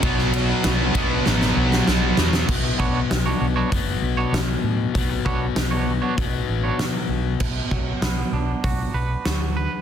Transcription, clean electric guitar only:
X:1
M:4/4
L:1/16
Q:1/4=98
K:Bm
V:1 name="Clean electric guitar"
z16 | z2 [B,DFc] z2 [B,DFc] z [B,DFc] z3 [B,DFc] z4 | z2 [B,DFc] z2 [B,DFc] z [B,DFc] z3 [B,DFc] z4 | B,,2 F,2 B,2 D2 F2 B2 F2 B2 |]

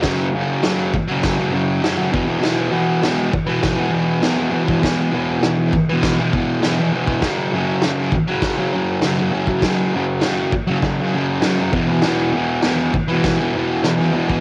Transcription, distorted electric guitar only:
X:1
M:4/4
L:1/16
Q:1/4=100
K:Emix
V:1 name="Distorted electric guitar" clef=bass
[F,,C,F,]2 [F,,C,F,]2 [F,,C,F,]3 [C,F,]2 [C,F,] [F,,C,F,]2 [F,,C,F,] [C,F,] [E,,B,,E,] [B,,E,] | [E,,B,,E,]2 [E,,B,,E,]2 [E,,B,,E,]3 [B,,E,]2 [B,,E,] [E,,B,,E,]2 [E,,B,,E,] [B,,E,] [E,,B,,E,] [B,,E,] | [E,,B,,E,]2 [E,,B,,E,]2 [E,,B,,E,]3 [B,,E,]2 [B,,E,] [E,,B,,E,]2 [E,,B,,E,] [B,,E,] [E,,B,,E,] [B,,E,] | [F,,C,F,]2 [F,,C,F,]2 [F,,C,F,]3 [C,F,]2 [C,F,] [F,,C,F,]2 [F,,C,F,] [C,F,] [F,,C,F,] [C,F,] |
[F,,C,F,]2 [F,,C,F,]2 [F,,C,F,]3 [C,F,]2 [C,F,] [F,,C,F,]2 [F,,C,F,] [C,F,] [E,,B,,E,] [B,,E,] | [E,,B,,E,]2 [E,,B,,E,]2 [E,,B,,E,]3 [B,,E,]2 [B,,E,] [E,,B,,E,]2 [E,,B,,E,] [B,,E,] [E,,B,,E,] [B,,E,] |]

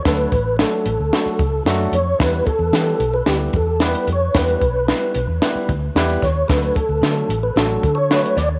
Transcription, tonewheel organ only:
X:1
M:4/4
L:1/16
Q:1/4=112
K:D
V:1 name="Tonewheel organ"
B4 A8 z2 c2 | B2 A4- A B G2 A2 B2 c2 | B4 z8 z2 c2 | B2 A4- A B A3 c3 d2 |]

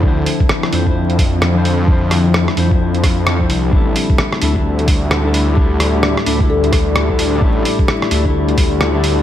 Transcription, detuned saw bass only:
X:1
M:4/4
L:1/8
Q:"Swing 16ths" 1/4=130
K:Dm
V:1 name="Detuned saw bass" clef=bass
D,, z2 F,,4- F,,- | F,,2 z F,,4 C,, | A,,, z2 D,,4- D,,- | D,,2 z D,,4- D,, |
A,,, z2 D,,4- D,, |]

